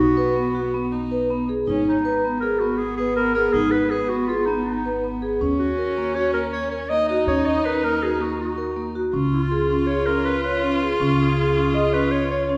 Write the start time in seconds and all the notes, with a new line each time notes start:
Already playing: B1 B3 F#4
0.17 B4
0.36 B3
0.55 F#4
0.74 B3
0.92 D#4
1.11 B4
1.31 B3
1.49 G#4
1.67 G#1 C#4 D#4
1.86 D#4
2.04 B3 B4
2.24 B3
2.40 G#4 A#4
2.59 B3 F#4
2.77 G#4
2.97 G#4 B4
3.16 B3 A#4
3.34 G#4 A#4
3.52 G#1 D#4 G#4
3.71 B4
3.90 G#4 B4
4.09 B3 F#4
4.27 F4 G#4
4.46 B3 D#4
4.65 D#4
4.86 B4
5.04 B3
5.22 G#4
5.41 D#2 C#4
5.59 F#4
5.78 A#4
5.98 A#3
6.15 F#4 C#5
6.33 A#3 A#4
6.53 C#5
6.71 A#4 C#5
6.89 A#3 D#4 D#5
7.08 F#4 D#5
7.27 D#2 C#4 C#5
7.46 D#5
7.65 A#4 B4
7.84 A#3 A#4
8.02 F#4 G#4
8.20 A#3 F#4
8.40 F#4
8.58 A#4
8.76 A#3
8.95 F#4
9.14 C#2 C#4 F4
9.33 F4
9.51 G#4
9.70 C#4
9.87 G#4 C#5
10.05 C#4 A#4
10.25 B4
10.43 B4 C#5
10.63 C#4
10.82 G#4
11.00 C#2 C#4
11.21 G#4
11.38 G#4
11.57 C#4
11.75 G#4 D#5
11.93 C#4 B4
12.11 C#5
12.31 C#5
12.49 C#4